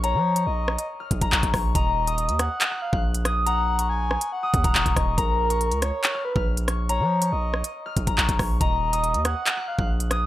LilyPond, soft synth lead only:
\new Staff \with { instrumentName = "Soft synth lead" } { \time 4/4 \key bes \minor \tempo 4 = 140 des''4 ees''4 r2 | ees''4. ges''4 f''8 r4 | ges''4 aes''4 ges''4. ees''8 | bes'4. des''4 ces''8 r4 |
des''4 ees''4 r2 | ees''4. ges''4 f''8 r4 | }